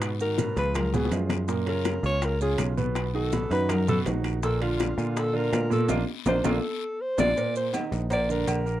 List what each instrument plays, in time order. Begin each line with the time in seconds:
Already playing: picked electric bass G#2, grand piano B2 B3 B4
0.02 high bongo, high conga, high timbale, long guiro, claves, maracas
0.20 grand piano D#3 D#4 F#4, alto saxophone A#4, high bongo, high conga, maracas
0.38 grand piano B2 B3 B4, high bongo, high conga, high timbale, short guiro, maracas
0.56 picked electric bass C#2, grand piano F3 F4 G#4, alto saxophone B4, high bongo, high conga, high timbale, short guiro, maracas
0.75 alto saxophone A#4, high bongo, high conga, low conga, high timbale, long guiro, claves, maracas
0.93 grand piano B2 B3 B4, alto saxophone G#4, high bongo, high conga, maracas
1.05 high bongo
1.11 picked electric bass F#2, grand piano F3 F4 G#4, high conga, high timbale, low timbale, short guiro, maracas
1.29 low bongo, high conga, high timbale, short guiro, claves, maracas
1.48 grand piano A#2 A#3 A#4, high bongo, high conga, long guiro, maracas
1.66 grand piano C#3 C#4 F4, alto saxophone A#4, high bongo, high conga, high timbale
1.85 high bongo, high conga, high timbale, short guiro, claves, maracas
2.03 picked electric bass C#2, grand piano C#3 C#4 F4, alto saxophone C#5, high bongo, high conga, short guiro, maracas
2.22 alto saxophone A#4, high bongo, high conga, high timbale, long guiro, maracas
2.40 grand piano C#3 C#4 F4, alto saxophone G#4, high conga, maracas
2.58 picked electric bass B1, high bongo, low bongo, high conga, high timbale, short guiro, claves, maracas
2.77 grand piano B2 B3 B4, high bongo, high conga, short guiro, maracas
2.95 high bongo, high conga, high timbale, long guiro, claves, maracas
3.14 grand piano D#3 D#4 F#4, alto saxophone A4, high bongo, high conga
3.32 grand piano B2 B3 B4, high bongo, high conga, high timbale, short guiro, maracas
3.51 picked electric bass F#2, grand piano D#3 D#4 F#4, alto saxophone B4, high bongo, high conga, high timbale, short guiro, maracas
3.69 alto saxophone A#4, high bongo, high conga, low conga, high timbale, long guiro, claves, maracas
3.88 grand piano B2 B3 B4, alto saxophone A4, high conga, low conga, maracas
4.06 picked electric bass A#1, grand piano D#3 D#4 F#4, high bongo, low bongo, high conga, high timbale, low timbale, short guiro, maracas
4.24 high bongo, high conga, high timbale, short guiro, claves, maracas
4.43 grand piano A#2 A#3 A#4, alto saxophone A4, high bongo, high conga, long guiro, maracas
4.60 grand piano D3 D4 F4, alto saxophone F4, high bongo, high conga, high timbale
4.80 high bongo, high conga, high timbale, short guiro, claves, maracas
4.97 picked electric bass A#2, grand piano D3 D4 F4, high bongo, high conga, short guiro, maracas
5.17 alto saxophone A4, high bongo, high conga, high timbale, long guiro, maracas
5.33 grand piano D3 D4 F4, alto saxophone A#4, high conga
5.53 picked electric bass A#2, high bongo, low bongo, high timbale, low timbale, short guiro, claves, maracas
5.70 grand piano A#2 A#3 A#4, alto saxophone A4, high bongo, high conga, short guiro, maracas
5.88 picked electric bass A#1, grand piano A#3 D4 F4, low bongo, high conga, high timbale, long guiro, claves, maracas
6.26 picked electric bass A#1, grand piano A#3 D4 F4, alto saxophone C5, low bongo, high conga, high timbale, long guiro, claves, maracas
6.44 picked electric bass A#1, grand piano A#3 D4 F4, alto saxophone A4, low bongo, high conga, high timbale, long guiro, claves, maracas
7.01 alto saxophone C5
7.18 picked electric bass A#1, grand piano A#3 D4 F4, alto saxophone D5, low bongo, high conga, high timbale, long guiro, claves, maracas
7.36 grand piano A#2 A#3 A#4, cowbell, high conga, long guiro, maracas
7.56 alto saxophone C5, high conga, maracas
7.73 grand piano D#3 D#4 D#5, cowbell, high conga, low agogo, short guiro, claves, maracas
7.92 picked electric bass A#1, cowbell, high conga, short guiro, maracas
8.10 grand piano A#2 A#3 A#4, alto saxophone D5, cowbell, high conga, low agogo, long guiro, maracas
8.28 grand piano D3 D4 D5, alto saxophone A#4, high conga, maracas
8.47 picked electric bass A#1, cowbell, high conga, low agogo, short guiro, claves, maracas
8.66 grand piano A#3 A#4 A#5, short guiro, maracas